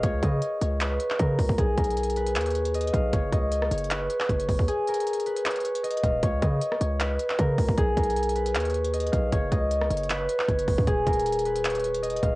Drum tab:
HH |x-----------x-----------x-----------x-----------x-----------x-----------x-----------o-----------|x-----------x---x---x---x---x---x---x-----x-----x--x--x--x--x-----x-----x---x---x---x-----------|x-----------x-----------x-----------x---x---x---x-----------x-----------x-----x-----o-----------|x-----------x---x---x---x---x---x---x-----x-----x--x--x--x--x-----x-----x---x---x---x-----------|
CP |------------------------------------------------x-----------------x-----------------------------|------------------------------------------------x-----------------------------------------------|------------------------------------------------x-----------------x-----------------------------|------------------------------------------------x-----------------------------------------------|
SD |------------------------------------------------------------------------------------------------|------------------------------------------------------------------------------------------------|------------------------------r-----------------------------------------------------------------|------------------------------------------------------------------------------------------------|
BD |o-----------o-----------------------------------------------------------o-----------o-----o-----|o-----------o-----------------------------------------------------------------------o-----------|o-----------o-----------------------------------------------------------o-----------o-----o-----|------------------------------------------------------------------------------------o-----------|

HH |x-----------x-----------x-----------x-----------x-----------x-----------x-----------o-----------|x-----------x---x---x---x---x---x---x-----x-----x--x--x--x--x-----x-----x---x---x---x-----------|x-----------x-----------x-----------x---x---x---x-----------x-----------x-----x-----o-----------|x-----------x---x---x---x---x---x---x-----x-----x--x--x--x--x-----x-----x---x---x---x-----------|
CP |------------------------------------------------x-----------------x-----------------------------|------------------------------------------------x-----------------------------------------------|------------------------------------------------x-----------------x-----------------------------|------------------------------------------------x-----------------------------------------------|
SD |------------------------------r-----------------------------------------------------------------|------------------------------------------------------------------------------------------------|------------------------------r-----------------------------------------------------------------|------------------------------------------------------------------------------------------------|
BD |o-----------o-----------------------------------------------------------o-----------o-----o-----|o-----------o-----------------------------------------------------------------------o-----------|o-----------o-----------------------------------------------------------o-----------o-----o-----|o-----------o-----------------------------------------------------------------------o-----------|